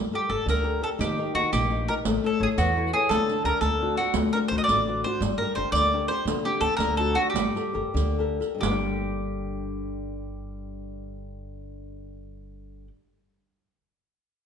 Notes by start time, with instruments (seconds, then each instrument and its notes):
Already playing: nylon-string guitar G3
0.12 nylon-string guitar G4 A4 A#4, mandolin G4
0.29 upright bass G1, nylon-string guitar G4 A4 A#4, mandolin A4
0.46 upright bass D2, nylon-string guitar D3, mandolin A#4, riq
0.63 nylon-string guitar G4 A4 A#4
0.81 nylon-string guitar G4 A4 A#4, mandolin A4
0.99 upright bass D#2, nylon-string guitar D#3, mandolin G4, riq
1.18 nylon-string guitar D#4 G4 A#4
1.35 upright bass D#2, nylon-string guitar D#4 G4 A#4, mandolin F#4
1.53 upright bass A#1, nylon-string guitar A#3, mandolin G4, riq
1.71 nylon-string guitar D#4 G4 A#4
1.88 nylon-string guitar D#4 G4 A#4, mandolin A#4
2.05 upright bass A1, nylon-string guitar A3, riq
2.24 nylon-string guitar E4 A4 C#5, mandolin A4
2.39 upright bass A1, nylon-string guitar E4 A4 C#5
2.43 mandolin G#4
2.58 upright bass E2, nylon-string guitar E3, mandolin F#4, riq
2.77 nylon-string guitar E4 A4 C#5
2.93 nylon-string guitar E4 A4 C#5, mandolin G#4
3.09 upright bass D2, nylon-string guitar D3, mandolin A4, riq
3.29 nylon-string guitar D4 G4 A4, riq
3.45 upright bass D2, nylon-string guitar D4 G4 A4, mandolin A#4, riq
3.61 upright bass D2, nylon-string guitar D3, mandolin A4, riq
3.81 nylon-string guitar C4 D4 F#4
3.97 nylon-string guitar C4 D4 F#4, mandolin F#4, riq
4.14 upright bass D2, nylon-string guitar A3, riq
4.33 nylon-string guitar C4 D4 F#4, mandolin A#4
4.48 upright bass D2, nylon-string guitar C4 D4 F#4, mandolin C5
4.58 mandolin D#5
4.64 mandolin D5
4.68 upright bass A1, nylon-string guitar D3, riq
4.88 nylon-string guitar C4 D4 F#4
5.04 nylon-string guitar C4 D4 F#4, mandolin C5
5.21 upright bass G1, nylon-string guitar G3, riq
5.38 nylon-string guitar D4 G4, mandolin A#4
5.42 nylon-string guitar A#4
5.55 upright bass G1, nylon-string guitar D4 G4 A#4, mandolin C5
5.72 upright bass D2, nylon-string guitar D3, mandolin D5, riq
5.93 nylon-string guitar D4 G4 A#4
6.08 nylon-string guitar D4 G4 A#4, mandolin C5
6.25 upright bass D2, nylon-string guitar D3, riq
6.45 nylon-string guitar C4 D4 G4, mandolin G4
6.61 upright bass D2, nylon-string guitar C4 D4 G4, mandolin A4
6.77 upright bass D2, nylon-string guitar D3, mandolin A#4, riq
6.97 nylon-string guitar C4 D4 F#4, mandolin A4
7.15 nylon-string guitar C4 D4 F#4, mandolin F#4
7.30 mandolin G4
7.34 upright bass G1, nylon-string guitar G3, riq
7.55 nylon-string guitar G4 A4 A#4, riq
7.73 upright bass G1, nylon-string guitar G4 A4 A#4
7.94 upright bass D2, nylon-string guitar D3, riq
8.19 nylon-string guitar G4 A4 A#4
8.40 nylon-string guitar G4 A4 A#4, riq
8.55 nylon-string guitar G2 D3
8.61 upright bass G1, nylon-string guitar G3, mandolin G4, riq
8.65 nylon-string guitar A3 A#3
8.71 nylon-string guitar D4